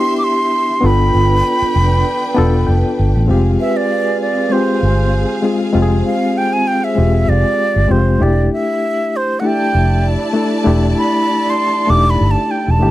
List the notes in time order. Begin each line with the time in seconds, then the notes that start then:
Already playing: B3 D4 E4 G4 E5 C6
0.18 D6
0.24 C6
0.81 G1 B3 D4 F4 A4 B4 G5
0.86 B5
1.15 G1
1.62 muted fingered electric bass stroke
1.76 F1
2.35 E1 B3 D4 F4 A4 A5
2.67 F1 G5
2.99 G1
3.15 A1
3.27 F1 G#3 C4 F4 G4 G#4 F5
3.59 B4 E5
3.77 D5
4.21 D5
4.50 G#3 C4 F4 C5
4.54 G4
4.83 G1
5.42 G#3 C4 F4 G#4
5.73 F1 G#3 C4 F4 G4 C5
5.82 G#4
6.06 F5
6.38 G5
6.53 G#5
6.67 G5
6.84 E5
6.95 E1 G#3 C4 F4 G4
7.29 F1 D5
7.76 G1
7.87 F1 G#3 C4 F4 G4 C5
8.19 E1 A3 D4 E4 G4
8.23 D5
8.53 E5
9.16 C5
9.40 A3 D4 E4 D5 F#5 A5
9.44 E4 G4 E5 G5
9.75 F1
10.33 A3 D4 E4 A4
10.64 E1 A3 D4 E4 G4
10.99 B5
11.50 C6
11.87 E1 A3 D4 D#4 G4 D6
11.96 E4
12.10 B5
12.21 G1
12.31 A5
12.51 G5
12.68 E1 A5
12.79 G1 A3 D4 E4 G4